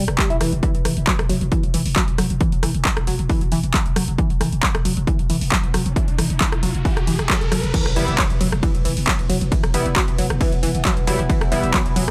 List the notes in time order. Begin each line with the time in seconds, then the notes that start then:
0.08 E1, cross-stick, closed hi-hat
0.18 G3, kick, clap, closed hi-hat
0.30 E1 E4, closed hi-hat
0.41 E1 E3, cross-stick, open hi-hat
0.52 E1, closed hi-hat
0.63 E3, kick, closed hi-hat
0.75 E1, closed hi-hat
0.85 E1 E3, cross-stick, open hi-hat
0.97 E1, closed hi-hat
1.07 F#3, kick, clap, closed hi-hat
1.19 E1, cross-stick, closed hi-hat
1.29 E1 F#3, open hi-hat
1.41 E1, closed hi-hat
1.52 E3, kick, closed hi-hat
1.63 E1, closed hi-hat
1.74 E1 E3, open hi-hat
1.86 E1, open hi-hat
1.96 F#3, kick, clap, closed hi-hat
2.08 E1, closed hi-hat
2.18 E1 F#3, cross-stick, open hi-hat
2.30 E1, closed hi-hat
2.41 E3, kick, closed hi-hat
2.52 E1, closed hi-hat
2.63 E1 E3, cross-stick, open hi-hat
2.75 E1, closed hi-hat
2.85 F#3, kick, clap, closed hi-hat
2.97 E1, cross-stick, closed hi-hat
3.07 E1 F#3, open hi-hat
3.19 E1, closed hi-hat
3.30 E3, kick, open hi-hat
3.41 E1, closed hi-hat
3.52 E1 E3, open hi-hat
3.63 E1, closed hi-hat
3.74 F#3, kick, clap, closed hi-hat
3.86 E1, closed hi-hat
3.96 E1 F#3, cross-stick, open hi-hat
4.08 E1, closed hi-hat
4.18 E3, kick, closed hi-hat, riser
4.30 E1, closed hi-hat
4.41 E1 E3, cross-stick, open hi-hat
4.52 E1, closed hi-hat
4.63 F#3, kick, clap, closed hi-hat
4.75 E1, cross-stick, closed hi-hat
4.85 E1 F#3, open hi-hat
4.97 E1, closed hi-hat
5.07 E3, kick, closed hi-hat
5.19 E1, closed hi-hat
5.30 E1 E3, open hi-hat
5.41 E1, open hi-hat
5.52 F#3, kick, clap, closed hi-hat
5.64 E1, closed hi-hat
5.74 E1 F#3, cross-stick, open hi-hat
5.86 E1, closed hi-hat
5.96 E3, kick, closed hi-hat
6.08 E1, closed hi-hat
6.18 E1 E3, cross-stick, open hi-hat
6.30 E1, closed hi-hat
6.41 F#3, kick, clap, closed hi-hat
6.52 E1, cross-stick, closed hi-hat
6.63 E1 F#3, open hi-hat
6.75 E1, closed hi-hat
6.85 E3, kick, open hi-hat
6.97 E1, cross-stick, closed hi-hat
7.07 E1 E3, open hi-hat
7.19 E1, cross-stick, closed hi-hat
7.30 F#3, kick, clap, closed hi-hat
7.41 E1, closed hi-hat
7.52 E1 F#3, cross-stick, open hi-hat
7.63 E1, closed hi-hat
7.74 E3 B3, kick, closed hi-hat, crash, ride, impact
7.86 E1, cross-stick, closed hi-hat
7.96 E1 E3 G3 B3 E4, open hi-hat
8.08 E1, closed hi-hat
8.18 F#3, kick, clap, closed hi-hat, ride
8.30 E1, closed hi-hat
8.41 E1 F#3, open hi-hat
8.52 E1, cross-stick, closed hi-hat
8.63 E3, kick, closed hi-hat, ride
8.75 E1, closed hi-hat
8.85 E1 E3, open hi-hat
8.97 E1, open hi-hat
9.07 F#3, kick, clap, closed hi-hat, ride
9.19 E1, closed hi-hat
9.29 E1 F#3, open hi-hat
9.41 E1, closed hi-hat
9.52 E3, kick, closed hi-hat, ride
9.63 E1, cross-stick, closed hi-hat
9.74 E1 E3 G3 B3 E4, open hi-hat
9.86 E1, closed hi-hat
9.96 F#3, kick, clap, closed hi-hat, ride
10.08 E1, closed hi-hat
10.18 E1 F#3, open hi-hat
10.30 E1, cross-stick, closed hi-hat
10.41 E3, kick, open hi-hat, ride
10.52 E1, closed hi-hat
10.63 E1 E3, open hi-hat
10.75 E1, closed hi-hat
10.85 F#3, kick, clap, closed hi-hat, ride
10.97 E1, closed hi-hat
11.07 E1 F#3 G3 B3 E4, open hi-hat
11.19 E1, closed hi-hat
11.30 E3, kick, closed hi-hat, ride
11.41 E1, cross-stick, closed hi-hat
11.52 E1 E3 G3 B3 E4, open hi-hat
11.64 E1, closed hi-hat
11.74 F#3, kick, clap, closed hi-hat, ride
11.86 E1, closed hi-hat
11.96 E1 F#3, open hi-hat